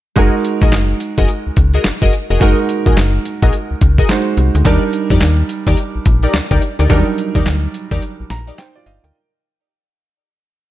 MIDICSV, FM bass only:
0, 0, Header, 1, 2, 480
1, 0, Start_track
1, 0, Tempo, 560748
1, 143, Time_signature, 4, 2, 24, 8
1, 9166, End_track
2, 0, Start_track
2, 0, Title_t, "FM bass"
2, 0, Program_c, 0, 39
2, 144, Note_on_c, 0, 30, 93
2, 258, Note_off_c, 0, 30, 0
2, 530, Note_on_c, 0, 34, 86
2, 626, Note_on_c, 0, 30, 90
2, 639, Note_off_c, 0, 34, 0
2, 810, Note_off_c, 0, 30, 0
2, 1011, Note_on_c, 0, 30, 100
2, 1081, Note_off_c, 0, 30, 0
2, 1256, Note_on_c, 0, 37, 47
2, 1292, Note_off_c, 0, 37, 0
2, 1345, Note_on_c, 0, 37, 85
2, 1529, Note_off_c, 0, 37, 0
2, 1584, Note_on_c, 0, 30, 44
2, 1643, Note_off_c, 0, 30, 0
2, 1730, Note_on_c, 0, 30, 84
2, 1801, Note_off_c, 0, 30, 0
2, 1972, Note_on_c, 0, 29, 84
2, 2042, Note_off_c, 0, 29, 0
2, 2065, Note_on_c, 0, 30, 103
2, 2179, Note_off_c, 0, 30, 0
2, 2452, Note_on_c, 0, 34, 94
2, 2522, Note_off_c, 0, 34, 0
2, 2545, Note_on_c, 0, 30, 97
2, 2729, Note_off_c, 0, 30, 0
2, 2933, Note_on_c, 0, 34, 94
2, 3003, Note_off_c, 0, 34, 0
2, 3176, Note_on_c, 0, 37, 49
2, 3211, Note_off_c, 0, 37, 0
2, 3269, Note_on_c, 0, 37, 85
2, 3451, Note_off_c, 0, 37, 0
2, 3744, Note_on_c, 0, 36, 81
2, 3859, Note_off_c, 0, 36, 0
2, 3894, Note_on_c, 0, 38, 95
2, 3963, Note_off_c, 0, 38, 0
2, 3983, Note_on_c, 0, 39, 111
2, 4098, Note_off_c, 0, 39, 0
2, 4371, Note_on_c, 0, 41, 86
2, 4442, Note_off_c, 0, 41, 0
2, 4468, Note_on_c, 0, 39, 98
2, 4651, Note_off_c, 0, 39, 0
2, 4854, Note_on_c, 0, 39, 100
2, 4924, Note_off_c, 0, 39, 0
2, 5098, Note_on_c, 0, 34, 45
2, 5133, Note_off_c, 0, 34, 0
2, 5188, Note_on_c, 0, 34, 88
2, 5371, Note_off_c, 0, 34, 0
2, 5428, Note_on_c, 0, 38, 45
2, 5486, Note_off_c, 0, 38, 0
2, 5575, Note_on_c, 0, 38, 82
2, 5644, Note_off_c, 0, 38, 0
2, 5816, Note_on_c, 0, 38, 95
2, 5885, Note_off_c, 0, 38, 0
2, 5908, Note_on_c, 0, 39, 108
2, 6021, Note_off_c, 0, 39, 0
2, 6295, Note_on_c, 0, 39, 90
2, 6364, Note_off_c, 0, 39, 0
2, 6387, Note_on_c, 0, 38, 97
2, 6570, Note_off_c, 0, 38, 0
2, 6776, Note_on_c, 0, 39, 86
2, 6844, Note_off_c, 0, 39, 0
2, 7021, Note_on_c, 0, 34, 47
2, 7055, Note_off_c, 0, 34, 0
2, 7109, Note_on_c, 0, 34, 86
2, 7292, Note_off_c, 0, 34, 0
2, 7588, Note_on_c, 0, 31, 86
2, 7701, Note_off_c, 0, 31, 0
2, 7738, Note_on_c, 0, 38, 86
2, 7806, Note_off_c, 0, 38, 0
2, 9166, End_track
0, 0, End_of_file